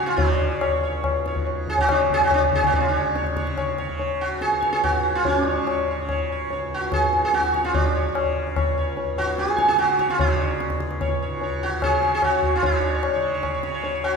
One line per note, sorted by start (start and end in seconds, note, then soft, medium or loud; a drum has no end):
0.00 0.71 C#2 medium
0.00 1.25 G#2 medium
0.00 0.17 C#3 medium
0.00 0.18 C#5 soft
0.06 0.16 F4 medium
0.06 tabla te medium
0.16 1.82 C#3 medium
0.16 0.78 D4 medium
0.16 tabla tin loud
0.16 tabla ge loud
0.61 0.82 C#5 soft
0.61 tabla na medium
0.71 4.36 C#2 medium
0.83 1.03 C#5 soft
1.04 tabla na medium
1.04 tabla ge medium
1.26 2.75 G#2 medium
1.26 1.46 C#5 soft
1.26 tabla te medium
1.36 tabla ge medium
1.47 tabla tin medium
1.68 1.79 G#4 medium
1.68 tabla tin medium
1.68 tabla ge medium
1.78 2.36 C#3 medium
1.78 1.90 F#4 loud
1.78 tabla tin medium
1.78 tabla ge medium
1.89 2.00 D4 medium
1.89 tabla na loud
1.89 tabla ge medium
2.10 2.23 G#4 loud
2.10 tabla tin medium
2.10 tabla ge medium
2.21 2.33 F#4 medium
2.21 tabla tin medium
2.21 tabla ge medium
2.31 2.43 D4 medium
2.31 tabla na medium
2.31 tabla ge medium
2.36 3.30 C#3 medium
2.52 2.65 G#4 loud
2.52 tabla tin medium
2.52 tabla ge medium
2.63 2.75 F#4 medium
2.63 tabla tin medium
2.63 tabla ge medium
2.74 4.90 G#2 medium
2.74 2.80 D4 medium
2.74 tabla tin loud
2.74 tabla ge loud
2.80 2.86 F4 medium
2.88 3.35 D4 medium
2.95 3.15 C#5 soft
3.16 3.35 C#5 soft
3.16 tabla te medium
3.27 3.83 C#3 medium
3.27 tabla te medium
3.36 3.56 C#5 soft
3.36 tabla ke medium
3.47 tabla te medium
3.58 3.77 C#5 soft
3.58 tabla na medium
3.58 tabla ge medium
3.78 3.98 C#5 soft
3.78 tabla te medium
3.83 5.44 C#3 medium
3.89 tabla ge medium
3.99 4.20 C#5 soft
3.99 tabla tin medium
4.21 4.41 F#4 medium
4.37 6.50 C#2 medium
4.41 4.71 G#4 medium
4.41 tabla te medium
4.52 tabla te medium
4.63 4.83 C#5 soft
4.63 tabla ke medium
4.73 4.83 G#4 medium
4.73 tabla te medium
4.84 5.15 F#4 medium
4.84 tabla tin medium
4.84 tabla ge medium
4.90 7.02 G#2 medium
5.15 5.26 F4 medium
5.25 5.41 C#4 medium
5.25 tabla tin loud
5.25 tabla ge medium
5.41 5.96 C#3 medium
5.41 5.85 D4 medium
5.49 5.68 C#5 soft
5.67 5.89 C#5 soft
5.67 tabla na medium
5.88 6.09 C#5 soft
5.88 tabla na medium
5.96 7.56 C#3 medium
6.09 6.30 C#5 soft
6.09 tabla na medium
6.09 tabla ge medium
6.32 6.50 C#5 soft
6.50 8.60 C#2 medium
6.50 6.71 C#5 soft
6.50 tabla tin medium
6.74 6.93 F#4 medium
6.92 7.24 G#4 medium
6.92 tabla na medium
6.92 tabla ge medium
7.03 9.13 G#2 medium
7.13 tabla te medium
7.25 7.34 G#4 medium
7.34 7.64 F#4 medium
7.34 tabla te medium
7.44 tabla te medium
7.54 8.09 C#3 medium
7.54 7.74 C#5 soft
7.54 tabla ke medium
7.64 7.74 F4 medium
7.64 tabla te medium
7.74 8.32 D4 medium
7.74 tabla tin loud
7.74 tabla ge medium
7.95 8.15 C#5 soft
8.09 9.65 C#3 medium
8.15 tabla na medium
8.56 8.77 C#5 soft
8.56 tabla na medium
8.56 tabla ge medium
8.60 10.70 C#2 medium
8.78 8.97 C#5 soft
8.97 tabla tin medium
9.13 11.22 G#2 medium
9.18 9.39 F#4 medium
9.18 tabla na medium
9.38 9.67 G#4 medium
9.38 tabla te medium
9.48 tabla te medium
9.58 9.78 C#5 soft
9.58 tabla ke medium
9.65 10.18 C#3 medium
9.65 9.79 G#4 medium
9.65 tabla te medium
9.78 10.10 F#4 loud
9.78 tabla te medium
9.89 tabla te medium
9.99 10.19 C#5 soft
9.99 tabla ke medium
10.10 10.21 F4 medium
10.10 tabla te medium
10.18 11.76 C#3 medium
10.18 10.78 D4 medium
10.18 tabla tin loud
10.18 tabla ge medium
10.41 10.60 C#5 soft
10.60 tabla te medium
10.70 14.16 C#2 medium
10.70 tabla te medium
10.80 tabla ke medium
10.91 tabla te medium
11.01 11.21 C#5 soft
11.01 tabla na medium
11.01 tabla ge medium
11.22 12.64 G#2 medium
11.22 11.41 C#5 soft
11.41 11.62 C#5 soft
11.41 tabla tin medium
11.63 11.83 F#4 medium
11.76 12.26 C#3 medium
11.82 12.13 G#4 loud
11.82 12.02 C#5 soft
11.82 tabla na medium
11.82 tabla ge medium
12.02 12.23 C#5 soft
12.02 tabla te medium
12.14 12.24 G#4 medium
12.22 12.55 F#4 medium
12.22 12.43 C#5 soft
12.22 tabla na medium
12.22 tabla ge medium
12.26 13.15 C#3 medium
12.43 12.63 C#5 soft
12.43 tabla ge medium
12.56 12.65 F4 medium
12.63 14.16 G#2 medium
12.63 13.21 D4 medium
12.63 tabla tin loud
12.63 tabla ge loud
12.75 12.84 C#5 soft
12.85 12.93 C#5 soft
12.95 13.12 C#5 soft
13.03 tabla na loud
13.13 13.67 C#3 medium
13.13 13.32 C#5 soft
13.34 13.44 C#5 soft
13.43 13.53 C#5 soft
13.43 tabla na medium
13.43 tabla ge medium
13.55 13.63 C#5 soft
13.63 14.16 C#3 medium
13.63 13.73 C#5 soft
13.63 tabla te medium
13.74 13.83 C#5 soft
13.84 13.94 C#5 soft
13.84 tabla tin medium
13.95 14.13 C#5 soft
14.04 14.16 F#4 medium
14.04 tabla na medium